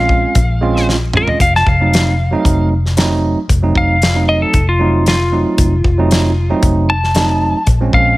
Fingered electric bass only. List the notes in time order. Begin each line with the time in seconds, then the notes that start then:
Already playing: A#1
0.35 A#1
1.40 F1
1.67 F1
2.45 F1
3.49 F1
4.54 F1
5.58 F1
5.84 F1
6.63 F1
7.67 A#1
7.93 A#1